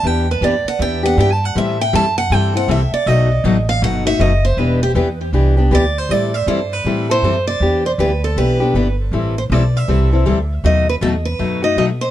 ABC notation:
X:1
M:4/4
L:1/16
Q:"Swing" 1/4=158
K:Em
V:1 name="Steel-string acoustic guitar"
g2 B2 d2 f2 g2 f2 (3g2 a2 f2 | e2 g2 a2 f2 g2 f2 e2 d2 | ^d6 =f2 ^f2 e2 d2 c2 | B2 G2 z8 d2 c2 |
d2 e2 c2 B4 c4 d2- | d2 c2 B2 A2 B6 z2 | z2 c2 d2 e8- e2 | ^d2 B2 A2 B4 d2 d2 c2 |]
V:2 name="Steel-string acoustic guitar"
[E,B,DG]2 z2 [E,B,DG] z3 [E,B,DG]2 [B,DG]2 [E,B,DG] z3 | [E,G,CEA]2 z2 [E,G,CEA] z3 [E,G,CEA]2 [CEA]2 [E,G,CEA] z3 | [B,,F,A,^DF]2 z2 [B,,F,A,DF] z3 [B,,F,A,DF]2 [A,DF]2 [B,,F,A,DF] z3 | [E,B,DG]2 z2 [E,B,DG] z3 [E,B,DG]2 [B,DG]2 [E,B,DG] z3 |
[E,G,CEA]2 z2 [E,G,CEA] z3 [E,G,CEA]2 [CEA]2 [E,G,CEA] z3 | [E,B,DG]2 z2 [E,B,DG] z3 [E,B,DG]2 [B,DG]2 [E,B,DG] z3 | [E,G,CEA]2 z2 [E,G,CEA] z3 [E,G,CEA]2 [CEA]2 [E,G,CEA] z3 | [B,,F,A,^DF]2 z2 [B,,F,A,DF] z3 [B,,F,A,DF]2 [A,DF]2 [B,,F,A,DF] z3 |]
V:3 name="Upright bass" clef=bass
E,,4 F,,2 z2 E,,4 G,,4 | A,,4 F,,4 G,,4 C,,2 z2 | B,,,4 A,,,4 G,,,4 F,,,4 | E,,,4 E,,4 C,,4 D,,4 |
A,,4 G,,4 A,,4 F,,4 | E,,4 D,,4 B,,,4 G,,,4 | A,,,4 B,,,4 C,,4 D,,4 | ^D,,4 E,,4 F,,4 B,,4 |]